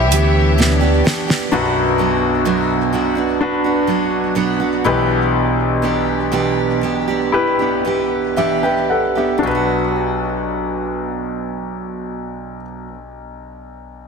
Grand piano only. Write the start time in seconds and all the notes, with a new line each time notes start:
Already playing: E4 G4 C#5
1.52 B1 F#2 D4 F#4 B4
3.41 D4 F#4 B4
4.85 B1 B2 E4 G4 B4
7.32 E4 G4 B4
8.37 G4 E5
8.63 B4 G5
8.90 A4 F#5
9.17 G4 E5
9.39 B1 D4 F#4
9.46 B4